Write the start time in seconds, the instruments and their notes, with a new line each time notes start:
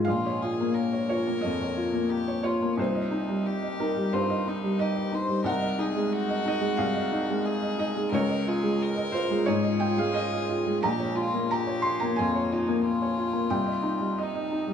0.05 felt piano A#1 F5, ambient pad A#3 F4 C#5, violin F4
0.26 felt piano C#5
0.42 felt piano F4, violin G#4
0.60 felt piano A#3
0.74 violin A#4
0.93 felt piano C#5
1.09 felt piano F4 C#5
1.27 felt piano A#3
1.41 felt piano F2 D#5
1.61 felt piano C#5
1.77 felt piano F4
1.93 felt piano A#3
2.10 violin G4
2.28 felt piano C#5
2.43 felt piano F4 C#5, violin F4
2.62 felt piano A#3
2.77 felt piano C2 C5, ambient pad G3 D#4 D#5, violin D#4
2.95 felt piano D#5
3.11 felt piano D#4
3.29 felt piano G3
3.46 violin G4
3.62 felt piano D#5
3.80 felt piano D#4 A#4
3.96 felt piano G3
4.13 felt piano G2 C5, violin F4
4.30 felt piano D#5
4.46 felt piano D#4, violin D#4
4.63 felt piano G3
4.79 violin G4, felt piano D#5
4.96 felt piano D#5
5.12 felt piano D#4, violin C5
5.29 felt piano G3
5.44 felt piano C2 F#5, ambient pad G#3, violin A#4
5.61 felt piano D#5
5.79 felt piano D#4, violin G#4
5.95 felt piano G#3
6.12 violin F#4
6.29 felt piano D#5
6.45 felt piano D#4 D#5
6.61 felt piano G#3
6.77 felt piano C2 F5
6.95 felt piano D#5
7.12 felt piano D#4
7.30 felt piano G#3
7.46 violin G#4
7.62 felt piano D#5
7.78 felt piano D#4 D#5
7.95 felt piano G#3
8.12 felt piano C#2 C#5, ambient pad F4 D#5, violin A#4
8.29 felt piano D#5
8.47 felt piano F4, violin G#4
8.63 felt piano G#3
8.82 violin A#4
8.97 felt piano D#5
9.12 felt piano F4 C5
9.30 felt piano G#3
9.46 felt piano G#2 C#5, violin G#4
9.63 felt piano D#5
9.80 felt piano F4 G5
9.97 felt piano G#3 F5
10.14 felt piano D#5
10.32 felt piano D#5
10.49 felt piano F4
10.66 felt piano G#3
10.80 felt piano A#1 A#5, ambient pad A#3 C#5, violin G4
10.99 felt piano C#5
11.15 violin F4, felt piano F4
11.33 felt piano A#3
11.51 violin G4, felt piano A#5
11.67 felt piano C#5
11.82 felt piano F4 C6
12.00 felt piano A#3 A#5
12.16 felt piano F2 G#5, violin F4
12.36 felt piano C#5
12.52 violin D#4, felt piano F4
12.68 felt piano A#3
12.87 violin F4
13.02 felt piano C#5
13.18 felt piano F4
13.33 felt piano A#3
13.50 felt piano C2 G5, ambient pad G3 D#4 D#5
13.66 felt piano D#5
13.83 felt piano D#4
13.99 felt piano G3
14.18 felt piano D#5
14.23 violin D#4
14.34 felt piano D#5
14.52 felt piano D#4
14.67 felt piano G3